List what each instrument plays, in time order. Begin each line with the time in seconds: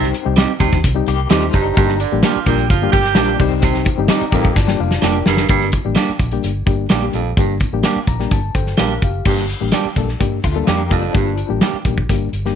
Already playing: fingered electric bass C2, clean electric guitar D#3 C4, reed electric piano G3 C4 D#4 G4
0.03 snare
0.13 closed hi-hat, tambourine
0.26 fingered electric bass C2, reed electric piano G3 C4 D#4 G4
0.37 clean electric guitar G3 C4 D#4 G4, snare, closed hi-hat, tambourine
0.60 fingered electric bass D2, baritone saxophone C3, reed electric piano G3 C4 D#4 G4, kick, closed hi-hat, tambourine
0.73 fingered electric bass D#2, kick, snare
0.83 fingered electric bass C2, kick, closed hi-hat, tambourine
0.95 reed electric piano G3 C4 D#4 G4
1.07 fingered electric bass C2, clean electric guitar A#3 G4, closed hi-hat, tambourine
1.30 fingered electric bass D#2, clean electric guitar G3 A3 C4 D#4 F4 G4, reed electric piano G3 C4 D#4 G4 C5, snare, closed hi-hat, tambourine
1.53 fingered electric bass F#1, baritone saxophone G2, clean electric guitar G3 D#4, kick, closed hi-hat, tambourine
1.75 fingered electric bass G1, baritone saxophone G2, reed electric piano G3 A#3 D4 G4, kick, closed hi-hat, tambourine
1.88 snare
2.00 saxophone section D3 D4, closed hi-hat, tambourine
2.12 fingered electric bass A1, reed electric piano G3 A#3 D4 G4
2.23 saxophone section F3 F4, clean electric guitar G3 A#3 D4 G4, snare, closed hi-hat, tambourine
2.36 muted fingered electric bass stroke
2.46 fingered electric bass A#1, baritone saxophone A#2, saxophone section G3 G4, reed electric piano G3 A#3 D4 G4, kick, closed hi-hat, tambourine
2.58 closed hi-hat
2.70 fingered electric bass G1, saxophone section F3 F4, kick, closed hi-hat, tambourine
2.82 reed electric piano G3 A#3 D4 G4
2.93 fingered electric bass G1, saxophone section G3 G4, clean electric guitar A#3 G4, kick, closed hi-hat, tambourine
3.04 snare
3.15 fingered electric bass A#1, clean electric guitar F3 G3 A#3 D4 G4, reed electric piano G3 A#3 D4 G4, snare, closed hi-hat, tambourine
3.39 fingered electric bass C2, clean electric guitar D#3 C4, reed electric piano G3 C4 D#4 G4, kick, open hi-hat, tambourine
3.62 baritone saxophone C3, kick, closed hi-hat, tambourine
3.74 snare
3.85 kick, closed hi-hat, tambourine
3.98 fingered electric bass G1, reed electric piano G3 C4 D#4 G4
4.08 clean electric guitar G3 C4 D#4 G4, snare, closed hi-hat, tambourine
4.21 muted fingered electric bass stroke, closed hi-hat
4.32 fingered electric bass A1, baritone saxophone F2, reed electric piano G3 C4 D#4 A#4, clean electric guitar A#3 G4, kick, closed hi-hat, tambourine
4.45 kick
4.55 fingered electric bass G1, clean electric guitar F3 D4, kick, snare, tambourine
4.68 reed electric piano G3 A#3 D4 G4, snare
4.80 fingered electric bass F1, reed electric piano D5 F5, tambourine
4.91 snare
5.02 fingered electric bass F1, clean electric guitar G3 A#3 D4 G4, reed electric piano A#4 D5, snare, tambourine
5.26 fingered electric bass F#1, baritone saxophone G2, reed electric piano G4 A#4, snare, tambourine
5.37 snare
5.49 fingered electric bass G1, baritone saxophone G2, reed electric piano G3 A#3 D4 G4, kick, closed hi-hat, tambourine
5.60 snare
5.72 kick, closed hi-hat, tambourine
5.85 fingered electric bass A1, reed electric piano G3 A#3 D4 G4
5.95 clean electric guitar G3 A#3 D4 G4, snare, closed hi-hat, tambourine
6.09 muted fingered electric bass stroke, closed hi-hat
6.19 fingered electric bass A#1, kick, closed hi-hat, tambourine
6.31 reed electric piano G3 A#3 D4 G4, closed hi-hat
6.43 fingered electric bass G1, closed hi-hat, tambourine
6.66 fingered electric bass G1, reed electric piano G3 A#3 D4 G4, kick, closed hi-hat, tambourine
6.90 fingered electric bass A#1, clean electric guitar G3 A#3 D4 G4, snare, closed hi-hat, tambourine
7.02 reed electric piano G3 A#3 D4 G4
7.13 fingered electric bass A#1, baritone saxophone F2, closed hi-hat, tambourine
7.37 fingered electric bass G1, baritone saxophone G2, reed electric piano G3 A#3 D4 G4, kick, closed hi-hat, tambourine
7.60 kick, closed hi-hat, tambourine
7.73 fingered electric bass A1, reed electric piano G3 A#3 D4 G4
7.83 clean electric guitar G3 A#3 D4 G4, snare, closed hi-hat, tambourine
7.96 muted fingered electric bass stroke
8.07 fingered electric bass A#1, reed electric piano A#5, kick, closed hi-hat, tambourine
8.19 reed electric piano G3 A#3 D4 G4, snare
8.31 fingered electric bass G1, reed electric piano A5, kick, closed hi-hat, tambourine
8.54 fingered electric bass G1, reed electric piano A4 C5 G5, kick, closed hi-hat, tambourine
8.66 snare
8.78 fingered electric bass A#1, clean electric guitar G3 A#3 D4 G4, reed electric piano G4 A#4 F5, snare, closed hi-hat, tambourine
9.02 fingered electric bass F#1, reed electric piano G4 F5, kick, closed hi-hat, tambourine
9.25 fingered electric bass G1, baritone saxophone G2, reed electric piano G3 A#3 D4 G4, kick, crash, tambourine
9.37 snare
9.49 closed hi-hat, tambourine
9.61 fingered electric bass A1, reed electric piano G3 A#3 D4 G4
9.72 clean electric guitar G3 A#3 D4 G4, snare, closed hi-hat, tambourine
9.85 muted fingered electric bass stroke
9.96 fingered electric bass A#1, reed electric piano G3 A#3 D4 A4, kick, closed hi-hat, tambourine
10.08 snare
10.20 fingered electric bass G2, reed electric piano G3 A#3 D4 G4, kick, closed hi-hat, tambourine
10.44 fingered electric bass D2, clean electric guitar A3 F4, kick, closed hi-hat, tambourine
10.55 reed electric piano G3 A#3 D4 A4
10.67 fingered electric bass F2, clean electric guitar G3 A#3 D4 G4, snare, closed hi-hat, tambourine
10.90 fingered electric bass F#1, baritone saxophone F2, clean electric guitar F3 D4, reed electric piano G3 A#3 D4 G4, kick, closed hi-hat, tambourine
11.13 fingered electric bass G1, baritone saxophone G2, reed electric piano G3 A#3 D4 G4, kick, closed hi-hat, tambourine
11.37 closed hi-hat, tambourine
11.49 fingered electric bass A1, reed electric piano G3 A#3 D4 G4
11.61 clean electric guitar G3 A#3 D4 G4, snare, closed hi-hat, tambourine
11.74 muted fingered electric bass stroke
11.85 fingered electric bass A#1, reed electric piano G3 A#3 D4 G4, kick, closed hi-hat, tambourine
11.98 kick
12.09 fingered electric bass G1, reed electric piano G3 A#3 D4 G4, kick, closed hi-hat, tambourine
12.33 fingered electric bass G1, closed hi-hat, tambourine
12.45 reed electric piano G3 A#3 D4 G4, snare